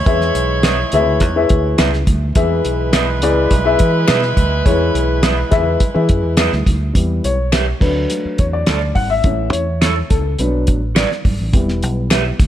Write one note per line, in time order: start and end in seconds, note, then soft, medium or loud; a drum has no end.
0.00 2.03 G#3 medium
0.00 2.03 E4 medium
0.00 2.03 C#5 medium
0.06 0.30 E2 loud
0.06 0.89 E3 medium
0.06 0.61 E4 medium
0.06 0.61 G#4 medium
0.06 0.61 B4 medium
0.06 0.61 E5 medium
0.06 kick loud
0.06 closed hi-hat medium
0.06 muted conga soft
0.21 snare soft
0.35 0.83 B1 medium
0.35 closed hi-hat medium
0.63 0.75 G#4 medium
0.63 0.76 B4 medium
0.63 0.76 E5 medium
0.63 finger snap medium
0.63 snare loud
0.63 closed hi-hat medium
0.63 high conga medium
0.92 1.21 D2 medium
0.92 1.20 E4 medium
0.92 1.20 G#4 medium
0.92 1.20 B4 medium
0.92 1.20 E5 loud
0.92 closed hi-hat medium
0.92 low conga medium
1.20 1.45 E2 medium
1.20 kick medium
1.20 closed hi-hat medium
1.20 muted conga soft
1.36 1.99 E4 medium
1.36 1.99 G#4 medium
1.36 1.99 B4 medium
1.36 1.99 E5 medium
1.49 1.74 D2 medium
1.49 kick medium
1.49 closed hi-hat medium
1.78 2.03 C#2 medium
1.78 1.90 G#4 medium
1.78 1.90 B4 loud
1.78 1.91 E5 medium
1.78 finger snap medium
1.78 snare loud
1.78 closed hi-hat medium
1.78 high conga medium
1.93 snare soft
2.07 2.32 D2 medium
2.07 kick medium
2.07 closed hi-hat medium
2.07 high conga medium
2.35 2.60 E2 loud
2.35 3.18 E3 medium
2.35 6.62 G#3 medium
2.35 6.62 E4 medium
2.35 2.90 E4 medium
2.35 2.90 G#4 medium
2.35 6.62 B4 loud
2.35 2.90 B4 medium
2.35 2.90 E5 medium
2.35 kick loud
2.35 closed hi-hat medium
2.35 muted conga soft
2.65 3.22 B1 medium
2.65 closed hi-hat medium
2.93 3.05 G#4 medium
2.93 3.05 B4 medium
2.93 3.05 E5 loud
2.93 finger snap medium
2.93 snare loud
2.93 closed hi-hat medium
2.93 high conga medium
3.22 3.46 C#2 medium
3.22 3.50 E4 medium
3.22 3.50 G#4 medium
3.22 3.50 B4 medium
3.22 3.50 D5 loud
3.22 closed hi-hat medium
3.51 3.75 B1 medium
3.51 kick medium
3.51 closed hi-hat medium
3.51 muted conga medium
3.65 4.28 E4 medium
3.65 4.28 G#4 medium
3.65 4.28 B4 medium
3.65 4.29 E5 loud
3.79 4.04 E3 medium
3.79 kick medium
3.79 closed hi-hat medium
4.07 4.33 B2 medium
4.07 4.20 G#4 medium
4.07 4.20 B4 medium
4.07 4.20 E5 medium
4.07 finger snap loud
4.07 snare loud
4.07 closed hi-hat medium
4.07 high conga medium
4.22 snare soft
4.37 4.61 D2 medium
4.37 kick medium
4.37 closed hi-hat medium
4.37 high conga medium
4.65 4.90 E2 loud
4.65 5.48 E3 medium
4.65 5.20 E4 medium
4.65 5.20 G#4 medium
4.65 5.20 B4 medium
4.65 5.20 C#5 loud
4.65 kick loud
4.65 closed hi-hat medium
4.65 muted conga soft
4.94 5.42 B1 loud
4.94 closed hi-hat medium
5.23 5.35 G#4 medium
5.23 5.35 B4 medium
5.23 5.35 E5 loud
5.23 finger snap medium
5.23 snare loud
5.23 closed hi-hat loud
5.23 high conga medium
5.51 5.76 E2 loud
5.51 5.78 E4 medium
5.51 5.78 G#4 medium
5.51 5.79 B4 medium
5.51 5.79 E5 loud
5.51 kick loud
5.51 snare soft
5.51 closed hi-hat medium
5.51 low conga medium
5.80 kick medium
5.80 closed hi-hat medium
5.80 muted conga soft
5.94 6.07 E3 medium
5.94 6.58 E4 medium
5.94 6.58 G#4 medium
5.94 6.58 B4 medium
5.94 6.58 E5 medium
6.09 6.24 F#2 medium
6.09 kick loud
6.09 closed hi-hat medium
6.09 muted conga soft
6.24 6.48 E2 medium
6.37 6.49 G#4 medium
6.37 6.50 B4 medium
6.37 6.50 E5 loud
6.37 finger snap loud
6.37 snare loud
6.37 closed hi-hat medium
6.37 high conga medium
6.52 6.65 D2 medium
6.52 snare soft
6.52 high conga medium
6.66 6.91 D2 medium
6.66 kick medium
6.66 closed hi-hat medium
6.66 high conga medium
6.93 7.19 E2 loud
6.93 7.32 G3 medium
6.93 7.33 B3 medium
6.93 7.33 E4 medium
6.93 kick loud
6.93 closed hi-hat medium
6.93 muted conga soft
7.24 7.72 B1 medium
7.24 7.77 C#5 loud
7.24 closed hi-hat medium
7.52 7.64 G4 medium
7.52 7.64 B4 medium
7.52 7.65 E5 medium
7.52 finger snap medium
7.52 snare medium
7.52 closed hi-hat medium
7.52 high conga medium
7.80 8.05 D2 loud
7.80 9.20 F#3 medium
7.80 9.20 A3 medium
7.80 9.21 D4 medium
7.80 8.41 B4 medium
7.80 kick loud
7.80 snare soft
7.80 crash medium
8.10 closed hi-hat medium
8.10 muted conga soft
8.25 muted fingered electric bass stroke soft
8.38 8.63 E2 medium
8.38 8.44 C#5 medium
8.38 kick medium
8.38 closed hi-hat medium
8.53 8.93 D5 medium
8.66 8.91 D2 medium
8.66 8.79 F#4 medium
8.66 8.79 A4 medium
8.66 8.79 D5 medium
8.66 finger snap medium
8.66 snare loud
8.66 closed hi-hat medium
8.66 high conga medium
8.95 9.20 G#1 medium
8.95 9.10 F#5 loud
8.95 kick medium
8.95 open hi-hat soft
8.95 high conga medium
9.10 9.54 E5 loud
9.24 9.48 A1 loud
9.24 9.62 E3 medium
9.24 9.62 A3 medium
9.24 9.63 C#4 medium
9.24 kick loud
9.24 closed hi-hat medium
9.24 muted conga soft
9.52 10.01 E2 medium
9.52 10.11 C#5 medium
9.52 closed hi-hat medium
9.81 9.93 E4 medium
9.81 9.94 A4 medium
9.81 9.94 C#5 medium
9.81 finger snap medium
9.81 snare medium
9.81 closed hi-hat medium
9.81 high conga medium
10.10 10.35 C#2 medium
10.10 10.40 A4 medium
10.10 kick loud
10.10 closed hi-hat medium
10.10 low conga medium
10.39 10.69 B1 medium
10.39 10.77 F#3 medium
10.39 10.77 B3 medium
10.39 10.78 D4 medium
10.39 10.66 B4 medium
10.39 closed hi-hat medium
10.39 muted conga soft
10.67 11.04 A1 medium
10.67 kick medium
10.67 closed hi-hat medium
10.67 muted conga soft
10.95 11.07 F#4 medium
10.95 11.08 B4 medium
10.95 11.08 D5 medium
10.95 finger snap medium
10.95 snare loud
10.95 closed hi-hat medium
10.95 high conga medium
11.11 snare soft
11.25 11.37 G#1 medium
11.25 kick loud
11.25 open hi-hat soft
11.25 high conga medium
11.40 11.55 A1 medium
11.53 11.83 E1 loud
11.53 12.35 G3 medium
11.53 12.35 B3 medium
11.53 12.36 E4 medium
11.53 kick loud
11.53 closed hi-hat medium
11.53 muted conga soft
11.68 snare soft
11.83 12.31 B1 medium
11.83 closed hi-hat medium
12.10 12.22 G4 medium
12.10 12.23 B4 medium
12.10 12.23 E5 medium
12.10 finger snap medium
12.10 snare medium
12.10 closed hi-hat medium
12.10 high conga medium
12.40 12.47 D2 medium
12.40 kick loud
12.40 snare soft
12.40 closed hi-hat medium